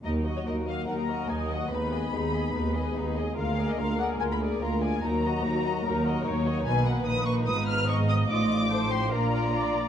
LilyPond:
<<
  \new Staff \with { instrumentName = "Violin section" } { \time 4/4 \key ees \minor \tempo 4 = 146 ees''8. des''16 ees''8 f''8 ges''16 bes''8. aes''8 ges''8 | ces'''2.~ ces'''8 r8 | f''8. ees''16 f''8 ges''8 aes''16 ces'''8. bes''8 aes''8 | bes''2.~ bes''8 r8 |
aes''8 fis''8 dis'''8 des'''8 ees'''8 f'''8 des'''8 ees'''8 | d'''4. c'''8 bes''2 | }
  \new Staff \with { instrumentName = "Viola section" } { \time 4/4 \key ees \minor ges'2 bes'4 ees''4 | ces''4 aes'4 ces''4 aes'4 | bes'2. f'4 | ges'2 bes'4 des''4 |
b'2 ces''4 ees''4~ | ees''4 c''4 bes'4 d''4 | }
  \new Staff \with { instrumentName = "Violin section" } { \time 4/4 \key ees \minor << { bes'8 ees''8 bes'8 ees''8 bes'8 ees''8 bes'8 ees''8 | ces''8 ees''8 ces''8 ees''8 ces''8 ees''8 ces''8 ees''8 | bes'8 d''8 bes'8 d''8 bes'8 d''8 bes'8 d''8 | bes'8 ees''8 bes'8 ees''8 bes'8 ees''8 bes'8 ees''8 |
b'2 ces''4 ees''4 | d''4 c''4 d''8 d''8 d''4 | } \\ { ees'8 ges'8 ees'8 ges'8 ees'8 ges'8 ees'8 ges'8 | ees'8 aes'8 ees'8 aes'8 ees'8 aes'8 ees'8 aes'8 | f'8 aes'8 f'8 aes'8 f'8 aes'8 f'8 aes'8 | ees'8 ges'8 ees'8 ges'8 ees'8 ges'8 ees'8 ges'8 |
dis'1 | f'4 a'8 g'8 f'2 | } >> }
  \new Staff \with { instrumentName = "French horn section" } { \time 4/4 \key ees \minor << { bes1 | ces'1 | bes1~ | bes1 |
ais2 ces'2 | ees'2 d'2 | } \\ { ges1 | aes1~ | aes1 | ges1 |
dis2 f2~ | f1 | } >> }
  \new Staff \with { instrumentName = "Cello section" } { \clef bass \time 4/4 \key ees \minor ees,4 ees,4 ees,4 ees,4 | ees,4 ees,4 ees,4 ees,4 | d,4 d,4 d,4 d,4 | ees,4 ees,4 ees,4 ees,4 |
b,4 ais,4 aes,2 | a,2 bes,2 | }
  \new Staff \with { instrumentName = "Double bass section" } { \clef bass \time 4/4 \key ees \minor ees,4 ees,4 ees,4 ees,4 | ees,4 ees,4 ees,4 ees,4 | d,4 d,4 d,4 d,4 | ees,4 ees,4 ees,4 ees,4 |
b,,4 ais,,4 aes,,2 | a,,2 bes,,2 | }
>>